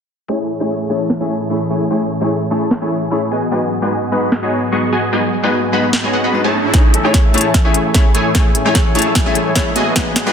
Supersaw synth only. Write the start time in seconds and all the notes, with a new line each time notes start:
0.29 A3 E4 G#4 C#5 G#5
0.60 A3 E4 G#4 C#5 G#5
0.90 A3 E4 G#4 C#5 A5
1.21 A3 E4 G#4 C#5 G#5
1.50 A3 E4 G#4 C#5 B5
1.70 A3 E4 G#4 C#5 G#5
1.91 A3 E4 G#4 C#5 G#5
2.21 A3 E4 G#4 C#5 G#5
2.51 A3 E4 G#4 C#5 A5
2.82 A3 E4 G#4 C#5 G#5
3.11 A3 E4 G#4 C#5 B5
3.31 B3 F#4 G#4 D#5 G#5
3.52 B3 F#4 G#4 D#5 G#5
3.82 B3 F#4 G#4 D#5 G#5
4.12 B3 F#4 G#4 D#5 B5
4.43 B3 F#4 G#4 D#5 G#5
4.72 B3 F#4 G#4 D#5 C#6
4.92 B3 F#4 G#4 D#5 G#5
5.13 B3 F#4 G#4 D#5 G#5
5.43 B3 F#4 G#4 D#5 G#5
5.73 B3 F#4 G#4 D#5 B5
6.04 B3 F#4 G#4 D#5 G#5
6.13 B3 F#4 G#4 D#5 F#5
6.24 B3 F#4 G#4 D#5 B5
6.44 A3 E4 G#4 C#5 A5
6.74 A3 E4 G#4 C#5 G#5
7.05 A3 E4 G#4 C#5 G#5
7.34 A3 E4 G#4 C#5 A5
7.65 A3 E4 G#4 C#5 G#5
7.95 A3 E4 G#4 C#5 B5
8.15 A3 E4 G#4 C#5 G#5
8.35 A3 E4 G#4 C#5 G#5
8.66 A3 E4 G#4 C#5 G#5
8.95 A3 E4 G#4 C#5 A5
9.26 A3 E4 G#4 C#5 G#5
9.56 A3 E4 G#4 C#5 B5
9.76 B3 F#4 G#4 D#5 G#5
9.96 F#4
10.27 B3 F#4 G#4 D#5 G#5